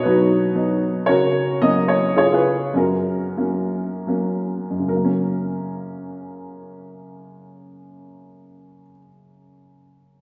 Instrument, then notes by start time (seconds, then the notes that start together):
upright piano
Already playing: B2 D#4 F#4 C#5 D#5
0.03 F#3 B3 D#4 F#4 B4
0.55 F#3 B3 D#4
1.06 C#3 F#4 A#4 C#5
1.62 F#3 A#3 C#4 D#5
1.88 C#5
2.16 C#3 F4 G#4 C#5
2.32 F4 G#4 B4
2.74 F#2 C#4 F#4 A#4
3.37 F#3 A#3 C#4
4.07 F#3 A#3 C#4
4.71 F#2
4.79 C#3
4.88 F#3 A#4
4.96 A#3
5.04 C#4